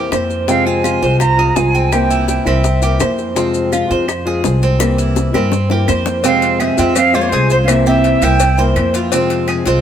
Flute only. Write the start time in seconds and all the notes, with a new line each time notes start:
0.49 F5
0.65 G#5
1.20 A#5
1.55 G#5
1.92 G5
2.28 G5
2.47 E5
6.25 F5
6.61 E5
6.96 F5
7.14 C5
7.21 C#5
7.29 C5
7.51 C5
7.64 F5
7.69 E5
7.87 E5
8.24 G5